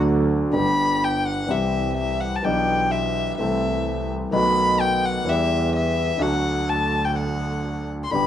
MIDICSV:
0, 0, Header, 1, 4, 480
1, 0, Start_track
1, 0, Tempo, 482315
1, 546, Time_signature, 4, 2, 24, 8
1, 1497, Tempo, 469484
1, 5817, Tempo, 477707
1, 8368, End_track
2, 0, Start_track
2, 0, Title_t, "Violin"
2, 0, Program_c, 0, 40
2, 548, Note_on_c, 0, 83, 78
2, 1034, Note_on_c, 0, 79, 73
2, 1049, Note_off_c, 0, 83, 0
2, 1261, Note_on_c, 0, 78, 72
2, 1276, Note_off_c, 0, 79, 0
2, 1503, Note_on_c, 0, 76, 68
2, 1518, Note_off_c, 0, 78, 0
2, 1965, Note_off_c, 0, 76, 0
2, 1971, Note_on_c, 0, 76, 74
2, 2212, Note_on_c, 0, 78, 69
2, 2227, Note_off_c, 0, 76, 0
2, 2366, Note_on_c, 0, 81, 61
2, 2382, Note_off_c, 0, 78, 0
2, 2449, Note_on_c, 0, 79, 71
2, 2464, Note_off_c, 0, 81, 0
2, 2933, Note_on_c, 0, 76, 73
2, 2948, Note_off_c, 0, 79, 0
2, 3405, Note_off_c, 0, 76, 0
2, 3411, Note_on_c, 0, 76, 63
2, 4099, Note_off_c, 0, 76, 0
2, 4397, Note_on_c, 0, 83, 86
2, 4870, Note_on_c, 0, 79, 83
2, 4886, Note_off_c, 0, 83, 0
2, 5120, Note_on_c, 0, 78, 80
2, 5136, Note_off_c, 0, 79, 0
2, 5371, Note_on_c, 0, 76, 82
2, 5387, Note_off_c, 0, 78, 0
2, 5833, Note_off_c, 0, 76, 0
2, 5843, Note_on_c, 0, 76, 80
2, 6307, Note_on_c, 0, 78, 81
2, 6322, Note_off_c, 0, 76, 0
2, 6786, Note_on_c, 0, 81, 81
2, 6801, Note_off_c, 0, 78, 0
2, 7142, Note_on_c, 0, 79, 69
2, 7157, Note_off_c, 0, 81, 0
2, 7252, Note_on_c, 0, 78, 66
2, 7267, Note_off_c, 0, 79, 0
2, 7977, Note_off_c, 0, 78, 0
2, 8137, Note_on_c, 0, 84, 64
2, 8204, Note_on_c, 0, 83, 87
2, 8219, Note_off_c, 0, 84, 0
2, 8368, Note_off_c, 0, 83, 0
2, 8368, End_track
3, 0, Start_track
3, 0, Title_t, "Grand piano"
3, 0, Program_c, 1, 0
3, 0, Note_on_c, 1, 38, 71
3, 0, Note_on_c, 1, 50, 72
3, 0, Note_on_c, 1, 54, 60
3, 0, Note_on_c, 1, 57, 60
3, 0, Note_on_c, 1, 66, 67
3, 487, Note_off_c, 1, 50, 0
3, 502, Note_on_c, 1, 50, 51
3, 509, Note_off_c, 1, 54, 0
3, 513, Note_off_c, 1, 38, 0
3, 517, Note_off_c, 1, 57, 0
3, 517, Note_on_c, 1, 55, 42
3, 523, Note_off_c, 1, 66, 0
3, 528, Note_on_c, 1, 43, 54
3, 530, Note_on_c, 1, 31, 57
3, 531, Note_on_c, 1, 59, 45
3, 546, Note_on_c, 1, 67, 54
3, 1427, Note_off_c, 1, 50, 0
3, 1435, Note_off_c, 1, 55, 0
3, 1440, Note_off_c, 1, 43, 0
3, 1441, Note_off_c, 1, 31, 0
3, 1442, Note_off_c, 1, 59, 0
3, 1450, Note_off_c, 1, 67, 0
3, 1460, Note_on_c, 1, 52, 47
3, 1472, Note_on_c, 1, 55, 43
3, 1474, Note_on_c, 1, 36, 52
3, 1477, Note_on_c, 1, 48, 52
3, 1486, Note_on_c, 1, 60, 41
3, 1497, Note_on_c, 1, 67, 53
3, 2397, Note_off_c, 1, 52, 0
3, 2404, Note_off_c, 1, 36, 0
3, 2404, Note_off_c, 1, 55, 0
3, 2406, Note_off_c, 1, 48, 0
3, 2411, Note_off_c, 1, 60, 0
3, 2417, Note_off_c, 1, 67, 0
3, 2440, Note_on_c, 1, 52, 49
3, 2456, Note_on_c, 1, 47, 56
3, 2457, Note_on_c, 1, 59, 45
3, 2465, Note_on_c, 1, 35, 59
3, 2465, Note_on_c, 1, 62, 48
3, 2475, Note_on_c, 1, 67, 57
3, 3363, Note_off_c, 1, 52, 0
3, 3371, Note_off_c, 1, 47, 0
3, 3372, Note_off_c, 1, 59, 0
3, 3376, Note_off_c, 1, 35, 0
3, 3376, Note_off_c, 1, 62, 0
3, 3381, Note_off_c, 1, 67, 0
3, 3418, Note_on_c, 1, 52, 47
3, 3427, Note_on_c, 1, 57, 44
3, 3435, Note_on_c, 1, 36, 56
3, 3437, Note_on_c, 1, 48, 57
3, 3440, Note_on_c, 1, 60, 44
3, 3462, Note_on_c, 1, 69, 50
3, 4335, Note_off_c, 1, 52, 0
3, 4339, Note_off_c, 1, 57, 0
3, 4343, Note_off_c, 1, 36, 0
3, 4344, Note_off_c, 1, 48, 0
3, 4346, Note_off_c, 1, 60, 0
3, 4357, Note_off_c, 1, 69, 0
3, 4368, Note_on_c, 1, 51, 51
3, 4382, Note_on_c, 1, 57, 46
3, 4385, Note_on_c, 1, 35, 62
3, 4387, Note_on_c, 1, 47, 62
3, 4392, Note_on_c, 1, 59, 48
3, 4415, Note_on_c, 1, 66, 56
3, 5280, Note_off_c, 1, 51, 0
3, 5288, Note_off_c, 1, 57, 0
3, 5289, Note_off_c, 1, 35, 0
3, 5290, Note_off_c, 1, 47, 0
3, 5292, Note_off_c, 1, 59, 0
3, 5304, Note_off_c, 1, 66, 0
3, 5325, Note_on_c, 1, 52, 60
3, 5329, Note_on_c, 1, 55, 45
3, 5346, Note_on_c, 1, 40, 56
3, 5350, Note_on_c, 1, 59, 45
3, 5370, Note_on_c, 1, 67, 55
3, 6239, Note_off_c, 1, 55, 0
3, 6247, Note_off_c, 1, 52, 0
3, 6248, Note_off_c, 1, 40, 0
3, 6249, Note_off_c, 1, 59, 0
3, 6259, Note_off_c, 1, 67, 0
3, 6265, Note_on_c, 1, 50, 54
3, 6280, Note_off_c, 1, 50, 0
3, 6280, Note_on_c, 1, 38, 64
3, 6280, Note_on_c, 1, 54, 45
3, 6287, Note_on_c, 1, 50, 62
3, 6287, Note_on_c, 1, 57, 48
3, 6302, Note_on_c, 1, 66, 57
3, 8114, Note_off_c, 1, 38, 0
3, 8114, Note_off_c, 1, 54, 0
3, 8118, Note_off_c, 1, 50, 0
3, 8118, Note_off_c, 1, 57, 0
3, 8125, Note_off_c, 1, 66, 0
3, 8212, Note_on_c, 1, 50, 50
3, 8212, Note_on_c, 1, 55, 46
3, 8222, Note_on_c, 1, 31, 62
3, 8223, Note_on_c, 1, 43, 57
3, 8237, Note_on_c, 1, 59, 47
3, 8248, Note_on_c, 1, 67, 53
3, 8368, Note_off_c, 1, 31, 0
3, 8368, Note_off_c, 1, 43, 0
3, 8368, Note_off_c, 1, 50, 0
3, 8368, Note_off_c, 1, 55, 0
3, 8368, Note_off_c, 1, 59, 0
3, 8368, Note_off_c, 1, 67, 0
3, 8368, End_track
4, 0, Start_track
4, 0, Title_t, "Double bass"
4, 0, Program_c, 2, 43
4, 0, Note_on_c, 2, 38, 95
4, 507, Note_off_c, 2, 38, 0
4, 557, Note_on_c, 2, 31, 66
4, 1455, Note_off_c, 2, 31, 0
4, 1508, Note_on_c, 2, 36, 71
4, 2422, Note_off_c, 2, 36, 0
4, 2469, Note_on_c, 2, 35, 67
4, 3378, Note_off_c, 2, 35, 0
4, 3424, Note_on_c, 2, 36, 70
4, 4338, Note_off_c, 2, 36, 0
4, 4381, Note_on_c, 2, 35, 66
4, 5287, Note_off_c, 2, 35, 0
4, 5333, Note_on_c, 2, 40, 70
4, 6241, Note_off_c, 2, 40, 0
4, 6283, Note_on_c, 2, 38, 72
4, 8115, Note_off_c, 2, 38, 0
4, 8220, Note_on_c, 2, 31, 67
4, 8368, Note_off_c, 2, 31, 0
4, 8368, End_track
0, 0, End_of_file